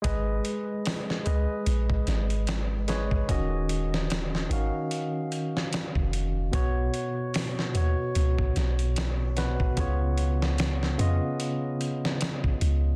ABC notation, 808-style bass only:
X:1
M:4/4
L:1/16
Q:"Swing 16ths" 1/4=74
K:Abdor
V:1 name="808-style bass" clef=bass
A,,,2 z4 D,, z B,,,2 A,,,6 | E,,,6 A,,, z6 F,,,3 | =B,,,2 z4 E,, z ^C,,2 B,,,6 | D,,6 F,, z6 z D,,2 |]